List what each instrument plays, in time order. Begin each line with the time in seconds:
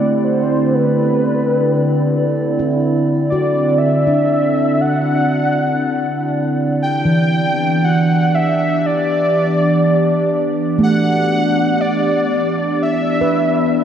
Already playing: ambient pad D3 C4 E4 G4 D5, handpan A3, soft synth lead D5
0.00 ambient pad D4
0.20 soft synth lead C5 D5
0.74 soft synth lead B4
2.59 handpan E4
3.30 handpan F#4, soft synth lead D5
3.78 soft synth lead E5
4.07 handpan D4
4.81 soft synth lead F#5
6.81 ambient pad E3, soft synth lead G5
7.05 handpan E3
7.32 ambient pad B3
7.84 soft synth lead F#5
7.90 ambient pad G4
8.35 soft synth lead E5
8.86 soft synth lead D5
10.79 handpan A3
10.83 soft synth lead F#5
11.81 soft synth lead D5
12.83 soft synth lead E5
13.21 handpan B4